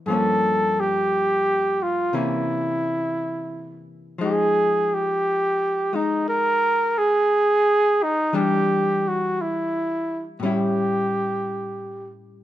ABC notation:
X:1
M:4/4
L:1/16
Q:"Swing" 1/4=58
K:Flyd
V:1 name="Trumpet"
A2 G4 F2 E6 z2 | _A2 G4 _E2 _B2 A4 E2 | G2 ^F2 E3 z G6 z2 |]
V:2 name="Hollow-body jazz guitar" clef=bass
[G,,F,_B,_D]8 [C,E,B,D]8 | [F,_A,_E]6 [A,E]8- [A,E]2 | [E,G,D]8 [A,,G,^CE]8 |]